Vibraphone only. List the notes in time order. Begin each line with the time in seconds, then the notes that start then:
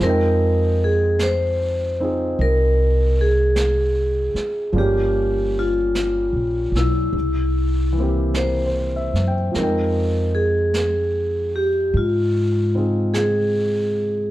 0.03 A#4
0.84 G#4
1.23 C5
2.41 A#4
3.21 G#4
4.78 G4
5.59 F4
6.77 E4
8.35 C5
9.56 A#4
10.35 G#4
11.56 G4
11.97 F4
13.14 G#4